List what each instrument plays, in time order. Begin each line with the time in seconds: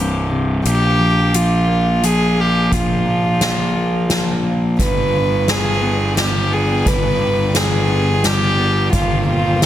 Already playing: picked electric bass C1, clean electric guitar C2 G2 C3, violin G4
0.31 clean electric guitar C3
0.65 picked electric bass A#1, clean electric guitar A#2, violin G4, closed hi-hat
0.99 clean electric guitar F3
1.34 clean electric guitar F3, violin F4, closed hi-hat
1.68 clean electric guitar A#3
2.03 clean electric guitar F3, violin G#4, closed hi-hat
2.38 clean electric guitar A#3, violin G4
2.72 picked electric bass A#1, clean electric guitar A#2, violin F4, kick, closed hi-hat
3.06 clean electric guitar F3
3.41 clean electric guitar F3, snare, closed hi-hat
3.76 clean electric guitar A#3
4.10 clean electric guitar F3, snare, closed hi-hat
4.43 clean electric guitar A#3
4.78 picked electric bass G1, clean electric guitar G2, string section B3 D4 D5 G5, violin B4, kick, closed hi-hat
5.13 clean electric guitar D3
5.48 violin G#4, snare, closed hi-hat
5.82 clean electric guitar B3
6.17 violin G4, snare, closed hi-hat
6.51 clean electric guitar B3, violin G#4
6.86 picked electric bass G1, clean electric guitar G2, violin B4, kick, closed hi-hat
7.20 clean electric guitar D3
7.55 violin G#4, snare, closed hi-hat
7.89 clean electric guitar B3
8.24 clean electric guitar G3, violin G4, snare, closed hi-hat
8.58 clean electric guitar B3
8.92 picked electric bass G1, clean electric guitar D#2, string section C4 A#4 C5, violin F4, kick, closed hi-hat
9.26 clean electric guitar A#2, violin F4
9.62 clean electric guitar D#3, violin D#4, snare, closed hi-hat